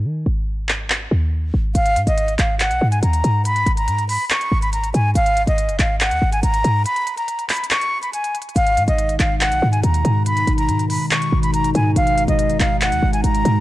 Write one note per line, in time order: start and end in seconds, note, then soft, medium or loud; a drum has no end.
0.05 0.25 D#3 loud
0.26 1.08 G#1 loud
0.69 clap loud
0.90 clap loud
1.11 1.52 D#2 loud
1.54 1.74 G#1 loud
1.75 1.98 G#1 loud
1.75 2.05 F5 loud
1.75 closed hi-hat medium
1.86 closed hi-hat medium
1.96 2.06 G#2 loud
1.96 closed hi-hat medium
2.07 2.38 G#1 loud
2.07 2.37 D#5 medium
2.07 closed hi-hat medium
2.18 closed hi-hat medium
2.28 closed hi-hat soft
2.39 2.72 G#1 loud
2.39 2.55 F5 medium
2.39 clap medium
2.39 closed hi-hat medium
2.60 2.90 F#5 medium
2.60 clap loud
2.60 closed hi-hat medium
2.71 2.81 B1 loud
2.71 closed hi-hat medium
2.81 3.02 G#2 loud
2.91 3.00 G#5 medium
2.91 closed hi-hat medium
3.03 3.23 D#2 loud
3.03 3.43 A#5 medium
3.03 closed hi-hat medium
3.13 closed hi-hat medium
3.24 3.65 G#2 loud
3.24 closed hi-hat medium
3.45 3.75 B5 loud
3.45 closed hi-hat medium
3.56 closed hi-hat medium
3.66 3.89 G#1 loud
3.66 closed hi-hat medium
3.77 4.07 A#5 medium
3.77 closed hi-hat medium
3.88 4.18 G#2 loud
3.88 closed hi-hat medium
3.98 closed hi-hat soft
4.09 4.25 B5 medium
4.09 open hi-hat medium
4.30 4.60 C#6 medium
4.30 clap loud
4.30 closed hi-hat medium
4.41 closed hi-hat medium
4.52 4.92 G#1 loud
4.62 4.70 B5 medium
4.62 closed hi-hat medium
4.73 4.89 A#5 medium
4.73 closed hi-hat medium
4.84 closed hi-hat medium
4.94 5.15 G#2 loud
4.94 5.10 G#5 medium
4.94 closed hi-hat medium
5.15 5.46 G#1 loud
5.15 5.45 F5 loud
5.15 closed hi-hat medium
5.26 closed hi-hat medium
5.37 closed hi-hat medium
5.47 5.70 G#1 loud
5.47 5.77 D#5 medium
5.47 closed hi-hat medium
5.58 closed hi-hat medium
5.69 5.79 F#1 loud
5.69 closed hi-hat medium
5.79 6.13 G#1 loud
5.79 5.96 F5 medium
5.79 clap medium
5.79 closed hi-hat medium
6.00 6.31 F#5 medium
6.00 clap loud
6.00 closed hi-hat medium
6.11 6.21 D#2 loud
6.11 closed hi-hat medium
6.22 6.42 G#1 loud
6.32 6.41 G#5 medium
6.32 closed hi-hat medium
6.43 6.64 G#1 loud
6.43 6.83 A#5 medium
6.43 closed hi-hat medium
6.54 closed hi-hat medium
6.64 6.86 G#2 loud
6.64 closed hi-hat medium
6.85 7.16 B5 loud
6.85 closed hi-hat medium
6.96 closed hi-hat medium
7.07 closed hi-hat medium
7.18 7.48 A#5 medium
7.18 closed hi-hat medium
7.28 closed hi-hat medium
7.39 closed hi-hat soft
7.49 7.66 B5 medium
7.49 clap medium
7.49 closed hi-hat soft
7.49 open hi-hat medium
7.57 closed hi-hat medium
7.64 closed hi-hat medium
7.71 8.01 C#6 medium
7.71 clap loud
7.71 closed hi-hat medium
7.81 closed hi-hat medium
8.02 8.11 B5 medium
8.02 closed hi-hat medium
8.13 8.37 G#5 medium
8.13 closed hi-hat medium
8.24 closed hi-hat medium
8.35 closed hi-hat medium
8.42 closed hi-hat medium
8.49 closed hi-hat soft
8.56 8.79 G#1 loud
8.56 13.60 B2 medium
8.56 13.60 D#3 medium
8.56 13.60 G#3 medium
8.56 13.60 D#4 loud
8.56 8.86 F5 loud
8.56 closed hi-hat medium
8.67 closed hi-hat medium
8.77 8.87 G#2 loud
8.77 closed hi-hat medium
8.88 9.18 G#1 loud
8.88 9.18 D#5 medium
8.88 closed hi-hat medium
8.98 closed hi-hat medium
9.09 closed hi-hat medium
9.20 9.53 G#1 loud
9.20 9.36 F5 medium
9.20 clap medium
9.20 closed hi-hat medium
9.40 9.71 F#5 medium
9.40 clap loud
9.40 closed hi-hat medium
9.52 9.62 B1 loud
9.52 closed hi-hat medium
9.62 9.83 G#2 loud
9.72 9.81 G#5 medium
9.72 closed hi-hat medium
9.83 10.04 D#2 loud
9.83 10.23 A#5 medium
9.83 closed hi-hat medium
9.94 closed hi-hat medium
10.05 10.46 G#2 loud
10.05 closed hi-hat medium
10.26 10.56 B5 loud
10.26 closed hi-hat medium
10.37 closed hi-hat medium
10.47 10.70 G#1 loud
10.47 closed hi-hat medium
10.58 10.88 A#5 medium
10.58 closed hi-hat medium
10.69 10.99 G#2 loud
10.69 closed hi-hat medium
10.79 closed hi-hat medium
10.90 11.06 B5 medium
10.90 open hi-hat medium
11.11 11.41 C#6 medium
11.11 clap loud
11.11 closed hi-hat medium
11.22 closed hi-hat medium
11.32 11.73 G#1 loud
11.43 11.51 B5 medium
11.43 closed hi-hat medium
11.54 11.70 A#5 medium
11.54 closed hi-hat medium
11.64 closed hi-hat medium
11.75 11.95 G#2 loud
11.75 11.91 G#5 medium
11.75 closed hi-hat medium
11.96 12.27 G#1 loud
11.96 12.26 F5 loud
11.96 closed hi-hat medium
12.07 closed hi-hat medium
12.18 closed hi-hat medium
12.28 12.51 G#1 loud
12.28 12.58 D#5 medium
12.28 closed hi-hat medium
12.39 closed hi-hat medium
12.49 12.60 F#1 loud
12.49 closed hi-hat soft
12.60 12.93 G#1 loud
12.60 12.77 F5 medium
12.60 clap loud
12.60 closed hi-hat medium
12.81 13.11 F#5 loud
12.81 clap loud
12.81 closed hi-hat medium
12.92 13.02 D#2 loud
12.92 closed hi-hat medium
13.03 13.23 G#1 loud
13.13 13.22 G#5 medium
13.13 closed hi-hat medium
13.24 13.44 G#1 loud
13.24 13.60 A#5 medium
13.24 closed hi-hat medium
13.35 closed hi-hat medium
13.45 13.60 G#2 loud
13.45 closed hi-hat medium